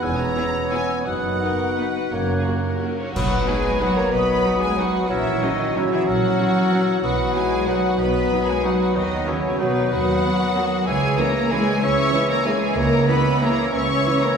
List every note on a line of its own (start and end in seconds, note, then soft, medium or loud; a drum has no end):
0.00 0.30 E1 medium
0.00 0.30 E2 medium
0.00 1.01 B3 medium
0.00 1.05 B3 medium
0.00 1.04 C#4 medium
0.00 0.88 G#4 medium
0.00 1.07 C#5 medium
0.00 0.19 G#5 medium
0.00 1.05 E6 medium
0.18 0.71 A#5 loud
0.36 0.44 B3 medium
0.36 0.44 E4 medium
0.36 0.44 G#4 medium
0.36 0.44 C#5 medium
0.70 0.80 B3 medium
0.70 0.80 E4 medium
0.70 0.79 G#4 medium
0.70 0.78 C#5 medium
0.70 1.04 G#5 loud
1.05 1.35 F#1 medium
1.05 1.34 F#2 medium
1.05 1.81 B3 medium
1.05 2.11 B3 medium
1.05 2.12 D#4 medium
1.05 2.95 F#4 medium
1.05 1.83 D#5 medium
1.05 2.95 F#5 loud
1.05 2.95 F#6 medium
1.40 1.49 B3 medium
1.40 1.50 D#4 medium
1.40 1.75 A#4 medium
1.77 1.87 B3 medium
1.77 1.86 D#4 medium
1.77 2.12 B4 medium
2.12 2.40 F#1 medium
2.12 2.41 F#2 medium
2.12 2.95 A#3 medium
2.12 2.99 A#3 medium
2.12 2.98 C#4 medium
2.12 2.37 A#4 medium
2.12 2.95 C#5 medium
2.38 2.47 G#4 medium
2.46 2.54 A#3 medium
2.46 2.54 F#4 medium
2.46 2.99 A#4 medium
2.82 2.91 A#3 medium
2.82 2.90 F#4 medium
2.99 3.15 C#5 medium
3.14 3.42 B1 medium
3.14 5.06 D#3 medium
3.14 3.77 F#3 medium
3.14 3.45 F#3 medium
3.14 5.06 F#3 medium
3.14 5.06 B3 medium
3.14 3.44 F#4 medium
3.14 5.06 F#4 medium
3.14 3.77 B4 medium
3.14 3.45 B4 medium
3.14 3.45 F#5 loud
3.14 3.77 D#6 medium
3.14 concert bass drum medium
3.14 crash medium
3.47 3.55 F#3 medium
3.47 3.81 G#3 medium
3.47 3.55 D#4 medium
3.47 3.81 G#4 medium
3.47 3.80 B4 medium
3.47 3.81 G#5 loud
3.79 4.12 F#3 medium
3.79 3.97 F#3 medium
3.79 3.89 F#3 medium
3.79 3.89 D#4 medium
3.79 3.97 F#4 loud
3.79 3.96 B4 medium
3.79 4.12 B4 medium
3.79 3.97 F#5 loud
3.79 4.12 D#6 medium
3.95 4.13 A#3 medium
3.95 4.12 A#4 medium
3.95 4.14 C#5 medium
3.95 4.13 A#5 medium
4.12 4.40 B1 medium
4.12 4.77 F#3 medium
4.12 4.61 B3 medium
4.12 4.61 B4 medium
4.12 4.77 B4 medium
4.12 4.63 D#5 loud
4.12 4.61 B5 loud
4.12 4.77 D#6 medium
4.46 4.54 F#3 medium
4.46 4.54 D#4 medium
4.61 4.78 G#3 medium
4.61 4.78 G#4 medium
4.61 4.78 B4 medium
4.61 4.78 G#5 loud
4.77 5.09 F#3 medium
4.77 5.10 F#3 medium
4.77 4.87 F#3 medium
4.77 4.87 D#4 medium
4.77 5.09 F#4 medium
4.77 5.09 B4 medium
4.77 5.10 F#5 medium
4.77 5.09 D#6 medium
5.09 5.37 A#1 medium
5.09 7.63 E3 medium
5.09 5.42 E3 medium
5.09 6.99 F#3 medium
5.09 5.74 F#3 medium
5.09 6.99 C#4 medium
5.09 5.42 E4 medium
5.09 6.99 F#4 medium
5.09 5.44 A#4 medium
5.09 5.74 C#5 medium
5.09 5.42 E5 loud
5.09 5.75 E6 medium
5.42 5.76 D#3 medium
5.42 5.50 F#3 medium
5.42 5.50 C#4 medium
5.42 5.76 D#4 medium
5.42 5.78 F#4 medium
5.42 5.76 D#5 medium
5.75 5.92 C#3 medium
5.75 5.83 F#3 medium
5.75 6.06 F#3 medium
5.75 5.82 C#4 medium
5.75 5.84 C#4 medium
5.75 5.95 E4 medium
5.75 5.91 C#5 loud
5.75 6.06 C#5 medium
5.75 6.06 E6 medium
5.91 6.07 E3 medium
5.91 5.98 E4 medium
5.91 6.09 G#4 medium
5.91 6.06 E5 loud
6.07 6.34 A#1 medium
6.07 7.01 F#3 medium
6.07 7.02 F#3 medium
6.07 7.01 F#4 medium
6.07 7.03 A#4 medium
6.07 7.04 C#5 medium
6.07 7.01 F#5 loud
6.07 7.01 E6 medium
6.39 6.47 F#3 medium
6.39 6.47 C#4 medium
6.72 6.80 F#3 medium
6.72 6.80 C#4 medium
7.02 7.29 B1 medium
7.02 8.91 F#3 medium
7.02 7.66 F#3 medium
7.02 7.34 F#3 medium
7.02 8.92 B3 medium
7.02 7.34 F#4 medium
7.02 8.92 F#4 medium
7.02 7.67 B4 medium
7.02 7.34 B4 medium
7.02 7.34 F#5 loud
7.02 7.66 D#6 medium
7.34 7.43 F#3 medium
7.34 7.67 G#3 medium
7.34 7.43 D#4 medium
7.34 7.67 G#4 medium
7.34 7.67 B4 medium
7.34 7.68 G#5 loud
7.66 8.94 D#3 medium
7.66 7.97 F#3 medium
7.66 7.99 F#3 medium
7.66 7.76 F#3 medium
7.66 7.76 D#4 medium
7.66 7.98 F#4 medium
7.66 8.00 B4 medium
7.66 7.98 B4 medium
7.66 7.99 F#5 medium
7.66 7.98 D#6 medium
7.98 8.25 B1 medium
7.98 8.63 F#3 medium
7.98 8.47 B3 medium
7.98 8.47 B4 loud
7.98 8.63 B4 medium
7.98 8.47 D#5 medium
7.98 8.48 B5 loud
7.98 8.63 D#6 medium
8.32 8.40 F#3 medium
8.32 8.40 D#4 medium
8.45 8.64 G#3 medium
8.45 8.63 G#4 medium
8.45 8.55 B4 medium
8.45 8.64 G#5 loud
8.64 8.95 F#3 medium
8.64 8.73 F#3 medium
8.64 8.96 F#3 medium
8.64 8.72 D#4 medium
8.64 8.95 F#4 medium
8.64 8.97 B4 medium
8.64 8.95 B4 medium
8.64 8.95 F#5 medium
8.64 8.94 D#6 medium
8.94 9.21 D#2 medium
8.94 10.83 D#3 medium
8.94 9.27 D#3 medium
8.94 10.83 F#3 medium
8.94 9.36 F#3 medium
8.94 10.83 B3 medium
8.94 9.26 D#4 medium
8.94 10.83 F#4 medium
8.94 9.29 F#4 medium
8.94 9.36 B4 medium
8.94 9.26 D#5 loud
8.94 9.36 D#6 medium
9.26 9.60 C#3 medium
9.26 9.35 F#3 medium
9.26 9.35 B3 medium
9.26 9.60 C#4 medium
9.26 9.60 E4 medium
9.26 9.60 C#5 medium
9.59 9.93 B2 medium
9.59 9.68 F#3 medium
9.59 9.91 F#3 medium
9.59 9.68 B3 medium
9.59 9.93 B3 medium
9.59 9.91 D#4 medium
9.59 9.92 B4 loud
9.59 9.90 B4 medium
9.59 9.90 D#6 medium
9.91 10.19 D#2 medium
9.91 10.85 F#3 medium
9.91 10.85 F#4 medium
9.91 10.59 B4 loud
9.91 10.57 B4 medium
9.91 10.87 F#5 loud
9.91 10.88 D#6 medium
10.24 10.32 F#3 medium
10.24 10.32 B3 medium
10.56 10.64 F#3 medium
10.56 10.64 B3 medium
10.56 10.88 A#4 medium
10.87 11.13 C#2 medium
10.87 11.50 E3 medium
10.87 11.18 G#3 medium
10.87 11.50 G#4 medium
10.87 11.18 G#4 loud
10.87 11.17 C#5 loud
10.87 11.18 G#5 loud
10.87 11.50 E6 medium
11.18 11.30 C#3 medium
11.18 11.26 E3 medium
11.18 11.30 E3 medium
11.18 11.30 G#3 medium
11.18 11.52 A#3 loud
11.18 11.30 C#4 medium
11.18 11.26 E4 medium
11.18 11.52 A#4 medium
11.18 11.51 C#5 medium
11.18 11.52 A#5 loud
11.51 11.63 C#3 medium
11.51 11.81 E3 medium
11.51 11.59 E3 medium
11.51 11.63 E3 medium
11.51 11.82 G#3 loud
11.51 11.63 G#3 medium
11.51 11.63 C#4 medium
11.51 11.59 E4 medium
11.51 11.81 G#4 medium
11.51 11.82 G#4 loud
11.51 11.82 C#5 medium
11.51 11.82 G#5 loud
11.51 11.81 E6 medium
11.81 12.08 C#2 medium
11.81 12.44 E3 medium
11.81 12.28 C#4 medium
11.81 12.45 G#4 medium
11.81 12.28 C#5 loud
11.81 12.31 E5 loud
11.81 12.29 C#6 loud
11.81 12.44 E6 medium
12.12 12.24 C#3 medium
12.12 12.24 E3 medium
12.12 12.21 E3 medium
12.12 12.25 G#3 medium
12.12 12.25 C#4 medium
12.12 12.21 E4 medium
12.29 12.46 A#3 medium
12.29 12.46 A#4 medium
12.29 12.46 C#5 loud
12.29 12.45 A#5 loud
12.45 12.57 C#3 medium
12.45 12.53 E3 medium
12.45 12.76 E3 medium
12.45 12.57 E3 medium
12.45 12.76 G#3 medium
12.45 12.57 G#3 medium
12.45 12.57 C#4 medium
12.45 12.53 E4 medium
12.45 12.78 G#4 medium
12.45 12.77 G#4 medium
12.45 12.76 C#5 medium
12.45 12.76 G#5 loud
12.45 12.76 E6 medium
12.75 13.03 C#2 medium
12.75 13.40 E3 medium
12.75 13.08 A#3 medium
12.75 13.08 A#4 loud
12.75 13.41 C#5 medium
12.75 13.09 C#5 loud
12.75 13.07 A#5 loud
12.75 13.41 E6 medium
13.07 13.21 C#3 medium
13.07 13.16 E3 medium
13.07 13.20 E3 medium
13.07 13.42 B3 loud
13.07 13.20 C#4 medium
13.07 13.16 E4 medium
13.07 13.41 B4 medium
13.07 13.43 D#5 medium
13.07 13.41 B5 loud
13.41 13.53 C#3 medium
13.41 13.72 E3 medium
13.41 13.49 E3 medium
13.41 13.54 E3 medium
13.41 13.73 A#3 loud
13.41 13.53 C#4 medium
13.41 13.50 E4 medium
13.41 13.73 A#4 loud
13.41 13.72 C#5 medium
13.41 13.76 C#5 medium
13.41 13.73 A#5 loud
13.41 13.73 E6 medium
13.73 14.00 C#2 medium
13.73 14.37 E3 medium
13.73 14.21 C#4 medium
13.73 14.22 C#5 loud
13.73 14.37 C#5 medium
13.73 14.21 E5 medium
13.73 14.21 C#6 loud
13.73 14.37 E6 medium
14.05 14.17 C#3 medium
14.05 14.13 E3 medium
14.05 14.17 E3 medium
14.05 14.17 C#4 medium
14.05 14.13 E4 medium
14.21 14.37 A#3 medium
14.21 14.37 A#4 medium
14.21 14.37 C#5 medium
14.21 14.37 A#5 loud